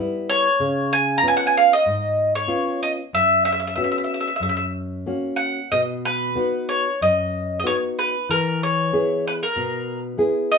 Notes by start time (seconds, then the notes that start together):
Already playing: G3
0.00 B3 E4
0.30 C#5
0.60 C#3
0.93 G#5
1.18 A#5
1.22 B3 C#4 F4
1.28 G#5
1.37 F#5
1.47 G#5
1.57 F5
1.73 D#5
1.86 G#2
2.35 C#5
2.47 B3 C#4 F4
2.83 D#5
3.13 F#2 E5
3.45 E5
3.52 E5
3.60 E5
3.67 E5
3.76 B3 C#4 F#4 E5
3.84 E5
3.92 E5
3.98 E5
4.04 E5
4.14 E5
4.21 E5
4.28 E5
4.36 E5
4.40 F#2 E5
4.49 E5
4.57 E5
5.06 A#3 C#4 F#4
5.36 F#5
5.72 B2 D#5
6.05 B4
6.35 B3 D#4 F#4
6.69 C#5
7.01 F#2 D#5
7.60 D#5
7.64 B3 D#4 F#4 C#5
7.99 B4
8.29 E3 A#4
8.63 C#5
8.93 B3 E4 G#4
9.27 B4
9.43 A#4
9.56 B2
10.18 B3 E4 G#4
10.52 D#5